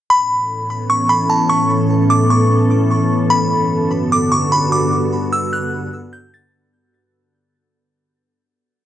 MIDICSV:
0, 0, Header, 1, 3, 480
1, 0, Start_track
1, 0, Tempo, 402685
1, 107, Time_signature, 4, 2, 24, 8
1, 10549, End_track
2, 0, Start_track
2, 0, Title_t, "Synth bell"
2, 0, Program_c, 0, 98
2, 115, Note_on_c, 0, 83, 104
2, 1024, Note_off_c, 0, 83, 0
2, 1070, Note_on_c, 0, 85, 82
2, 1297, Note_off_c, 0, 85, 0
2, 1304, Note_on_c, 0, 83, 85
2, 1534, Note_off_c, 0, 83, 0
2, 1546, Note_on_c, 0, 81, 68
2, 1775, Note_off_c, 0, 81, 0
2, 1783, Note_on_c, 0, 85, 77
2, 2013, Note_off_c, 0, 85, 0
2, 2506, Note_on_c, 0, 86, 83
2, 2735, Note_off_c, 0, 86, 0
2, 2748, Note_on_c, 0, 85, 71
2, 2976, Note_off_c, 0, 85, 0
2, 3937, Note_on_c, 0, 83, 97
2, 4855, Note_off_c, 0, 83, 0
2, 4913, Note_on_c, 0, 86, 88
2, 5138, Note_off_c, 0, 86, 0
2, 5147, Note_on_c, 0, 85, 77
2, 5375, Note_off_c, 0, 85, 0
2, 5390, Note_on_c, 0, 83, 79
2, 5617, Note_off_c, 0, 83, 0
2, 5629, Note_on_c, 0, 86, 76
2, 5856, Note_off_c, 0, 86, 0
2, 6348, Note_on_c, 0, 88, 89
2, 6576, Note_off_c, 0, 88, 0
2, 6589, Note_on_c, 0, 90, 75
2, 7265, Note_off_c, 0, 90, 0
2, 7301, Note_on_c, 0, 91, 77
2, 7532, Note_off_c, 0, 91, 0
2, 7551, Note_on_c, 0, 93, 84
2, 7778, Note_off_c, 0, 93, 0
2, 10549, End_track
3, 0, Start_track
3, 0, Title_t, "Ambient pad"
3, 0, Program_c, 1, 92
3, 108, Note_on_c, 1, 52, 68
3, 108, Note_on_c, 1, 59, 68
3, 108, Note_on_c, 1, 61, 68
3, 109, Note_on_c, 1, 45, 74
3, 109, Note_on_c, 1, 69, 79
3, 3909, Note_off_c, 1, 52, 0
3, 3909, Note_off_c, 1, 59, 0
3, 3910, Note_off_c, 1, 45, 0
3, 3910, Note_off_c, 1, 61, 0
3, 3947, Note_on_c, 1, 43, 76
3, 3947, Note_on_c, 1, 50, 67
3, 3947, Note_on_c, 1, 59, 67
3, 3948, Note_on_c, 1, 66, 70
3, 7740, Note_off_c, 1, 69, 0
3, 7749, Note_off_c, 1, 43, 0
3, 7749, Note_off_c, 1, 50, 0
3, 7749, Note_off_c, 1, 59, 0
3, 7749, Note_off_c, 1, 66, 0
3, 10549, End_track
0, 0, End_of_file